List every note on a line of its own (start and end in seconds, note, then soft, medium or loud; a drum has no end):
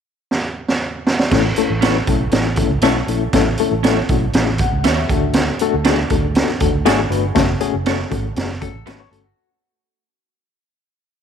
0.31 snare medium
0.68 snare medium
1.07 snare medium
1.19 snare medium
1.31 1.51 A1 medium
1.31 1.46 A3 loud
1.31 1.46 C#4 medium
1.31 1.46 E4 medium
1.31 1.46 A4 loud
1.31 kick loud
1.31 snare medium
1.31 crash medium
1.56 1.71 A3 medium
1.56 1.71 C#4 medium
1.56 1.71 E4 medium
1.56 1.71 A4 loud
1.56 closed hi-hat medium
1.70 1.99 A1 medium
1.81 1.96 A3 medium
1.81 1.95 C#4 medium
1.81 1.96 C#4 medium
1.81 1.96 E4 medium
1.81 1.97 E4 medium
1.81 1.96 A4 medium
1.81 1.97 B4 medium
1.81 1.96 C#5 medium
1.81 snare loud
1.81 closed hi-hat medium
2.07 2.27 B1 medium
2.07 2.22 A3 medium
2.07 2.22 C#4 medium
2.07 2.22 E4 medium
2.07 2.22 A4 medium
2.07 kick medium
2.07 closed hi-hat medium
2.31 2.62 A1 medium
2.31 2.47 A3 medium
2.31 2.47 C#4 medium
2.31 2.47 E4 medium
2.31 2.46 A4 medium
2.31 snare loud
2.31 closed hi-hat medium
2.56 2.72 A3 medium
2.56 2.72 C#4 medium
2.56 2.72 E4 medium
2.56 2.72 A4 medium
2.56 kick medium
2.56 closed hi-hat medium
2.69 2.80 C#2 medium
2.81 3.02 B1 medium
2.81 2.97 A3 loud
2.81 2.97 C#4 medium
2.81 2.97 C#4 loud
2.81 2.97 E4 medium
2.81 2.97 A4 loud
2.81 2.97 C#5 medium
2.81 snare loud
2.81 closed hi-hat loud
3.07 3.27 A#1 medium
3.07 3.23 A3 medium
3.07 3.22 C#4 medium
3.07 3.23 E4 medium
3.07 3.23 A4 medium
3.07 closed hi-hat medium
3.33 3.53 A1 medium
3.33 3.48 A3 loud
3.33 3.48 C#4 medium
3.33 3.48 E4 medium
3.33 3.48 A4 loud
3.33 kick loud
3.33 snare loud
3.33 closed hi-hat medium
3.58 3.73 A3 loud
3.58 3.73 C#4 medium
3.58 3.73 E4 medium
3.58 3.73 A4 loud
3.58 closed hi-hat medium
3.71 4.01 A1 medium
3.83 3.98 A3 medium
3.83 3.97 C#4 medium
3.83 3.98 C#4 medium
3.83 3.98 E4 medium
3.83 3.98 A4 medium
3.83 3.98 C#5 medium
3.83 snare loud
3.83 closed hi-hat medium
4.09 4.29 B1 medium
4.09 4.24 A3 medium
4.09 4.24 C#4 medium
4.09 4.24 E4 medium
4.09 4.24 F#4 medium
4.09 kick medium
4.09 closed hi-hat medium
4.33 4.64 A1 medium
4.33 4.49 A3 medium
4.33 4.49 C#4 medium
4.33 4.49 E4 medium
4.33 4.49 G#4 medium
4.33 snare loud
4.33 closed hi-hat medium
4.58 4.84 F#5 medium
4.58 kick medium
4.58 closed hi-hat medium
4.72 4.82 C#2 medium
4.84 5.04 D#2 medium
4.84 4.98 C#4 medium
4.84 4.98 E4 medium
4.84 4.99 A4 medium
4.84 4.99 C#5 medium
4.84 5.33 E5 medium
4.84 snare loud
4.84 closed hi-hat loud
5.09 5.49 D2 medium
5.09 5.51 A3 medium
5.09 5.51 D4 medium
5.09 5.51 F#4 medium
5.09 5.51 A4 medium
5.09 kick medium
5.09 closed hi-hat medium
5.33 snare loud
5.33 closed hi-hat medium
5.59 5.75 A3 loud
5.59 5.75 D4 medium
5.59 5.75 F#4 medium
5.59 5.75 A4 loud
5.59 closed hi-hat medium
5.74 6.03 D2 medium
5.84 6.00 A3 medium
5.84 5.99 D4 medium
5.84 6.00 D4 medium
5.84 5.99 F#4 medium
5.84 6.00 F#4 medium
5.84 6.00 G#4 medium
5.84 6.00 A4 medium
5.84 5.99 D5 medium
5.84 snare loud
5.84 closed hi-hat medium
6.10 6.40 D2 medium
6.10 6.25 A3 medium
6.10 6.25 D4 medium
6.10 6.25 F#4 medium
6.10 6.25 A4 medium
6.10 kick medium
6.10 closed hi-hat medium
6.35 6.50 A3 medium
6.35 6.50 D4 medium
6.35 6.50 F#4 medium
6.35 6.50 A4 medium
6.35 snare loud
6.35 closed hi-hat medium
6.60 6.71 E2 medium
6.60 6.75 A3 medium
6.60 6.75 D4 medium
6.60 6.75 F#4 medium
6.60 6.75 A4 medium
6.60 kick medium
6.60 closed hi-hat medium
6.74 6.83 D2 medium
6.85 7.05 G#1 medium
6.85 7.00 A3 loud
6.85 6.99 D4 medium
6.85 7.00 D4 medium
6.85 7.00 F#4 loud
6.85 7.00 F#4 medium
6.85 7.00 G#4 loud
6.85 7.00 A4 medium
6.85 7.01 D5 medium
6.85 snare loud
6.85 closed hi-hat loud
7.10 7.30 G1 medium
7.10 7.24 A3 medium
7.10 7.25 D4 medium
7.10 7.25 F#4 medium
7.10 7.25 B4 medium
7.10 closed hi-hat medium
7.35 7.56 F#1 loud
7.35 7.50 A3 loud
7.35 7.50 C#4 medium
7.35 7.50 F#4 medium
7.35 7.50 A4 loud
7.35 kick loud
7.35 snare loud
7.35 closed hi-hat medium
7.60 7.75 A3 loud
7.60 7.75 C#4 loud
7.60 7.75 F#4 medium
7.60 7.75 G#4 loud
7.60 closed hi-hat medium
7.74 8.04 F#1 medium
7.86 8.00 A3 medium
7.86 8.00 C#4 medium
7.86 8.00 F#4 medium
7.86 8.01 A4 medium
7.86 8.01 C#5 medium
7.86 snare loud
7.86 closed hi-hat medium
8.11 8.32 G#1 medium
8.11 8.25 A3 medium
8.11 8.25 C#4 medium
8.11 8.25 F#4 medium
8.11 8.25 A4 medium
8.11 kick medium
8.11 closed hi-hat medium
8.36 8.66 F#1 medium
8.36 8.51 A3 medium
8.36 8.51 C#4 medium
8.36 8.51 F#4 medium
8.36 8.51 G#4 medium
8.36 snare loud
8.36 closed hi-hat medium
8.50 snare soft
8.61 8.76 A3 medium
8.61 8.76 C#4 medium
8.61 8.76 F#4 medium
8.61 8.86 A4 medium
8.61 8.76 A4 medium
8.61 kick medium
8.61 closed hi-hat medium
8.74 8.84 A1 medium
8.86 9.01 A3 loud
8.86 9.00 C#4 medium
8.86 9.01 C#4 loud
8.86 9.00 F#4 medium
8.86 9.01 F#4 loud
8.86 9.00 A4 medium
8.86 8.99 B4 medium
8.86 9.01 B4 loud
8.86 9.01 C#5 medium
8.86 snare medium
8.86 closed hi-hat loud
9.00 9.11 C#5 medium
9.11 9.31 G1 medium
9.11 9.26 A3 medium
9.11 9.26 C#4 medium
9.11 9.26 F#4 medium
9.11 9.24 A4 medium
9.11 9.26 A4 medium
9.11 closed hi-hat medium
9.24 9.48 F#4 medium